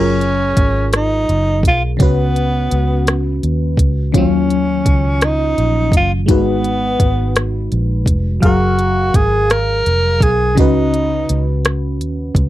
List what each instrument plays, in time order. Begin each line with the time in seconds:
Already playing: fingered electric bass F#1, fm electric piano F#3 F4 G#4 A#4, tenor saxophone C#4
0.21 closed hi-hat
0.57 fingered electric bass G#1, kick, closed hi-hat
0.93 tenor saxophone D#4, cross-stick, closed hi-hat
1.29 fingered electric bass F#1, closed hi-hat
1.63 fingered electric bass B1, kick, closed hi-hat
1.67 tenor saxophone F4
1.97 fingered electric bass C#2, fm electric piano C#3 C#4 F#4, kick, closed hi-hat
2.03 tenor saxophone B3, fm electric piano B4
2.36 closed hi-hat
2.71 fingered electric bass C#2, closed hi-hat
3.07 cross-stick, closed hi-hat
3.43 fingered electric bass D#2, closed hi-hat
3.77 fingered electric bass C#2, kick, closed hi-hat
4.12 fingered electric bass D#2, fm electric piano D#3 C#4 F4, kick, closed hi-hat
4.17 fm electric piano F#3, tenor saxophone C#4
4.50 closed hi-hat
4.86 fingered electric bass C#2, kick, closed hi-hat
5.21 tenor saxophone D#4, cross-stick, closed hi-hat
5.58 fingered electric bass A#1, closed hi-hat
5.92 fingered electric bass F#1, kick, closed hi-hat
5.96 tenor saxophone F4
6.26 fingered electric bass G#1, fm electric piano G#3 D#4 F#4, kick, closed hi-hat
6.31 tenor saxophone B3, fm electric piano B4
6.64 closed hi-hat
7.00 fingered electric bass G#1, kick, closed hi-hat
7.36 cross-stick, closed hi-hat
7.72 fingered electric bass A#1, closed hi-hat
8.06 fingered electric bass F1, kick, closed hi-hat
8.40 fingered electric bass F#1, fm electric piano F#3 G#4 F5, kick, closed hi-hat
8.45 tenor saxophone F#4, fm electric piano A#4
8.79 closed hi-hat
9.14 fingered electric bass G#1, tenor saxophone G#4, kick, closed hi-hat
9.50 tenor saxophone A#4, cross-stick, closed hi-hat
9.86 fingered electric bass F1, closed hi-hat
10.20 fingered electric bass B1, tenor saxophone G#4, kick, closed hi-hat
10.55 fingered electric bass C#2, fm electric piano C#3 C#4 F#4, tenor saxophone D#4, kick, closed hi-hat
10.61 fm electric piano B4
10.94 closed hi-hat
11.29 fingered electric bass C#2, closed hi-hat
11.65 cross-stick, closed hi-hat
12.01 fingered electric bass D#2, closed hi-hat
12.35 fingered electric bass C#2, kick, closed hi-hat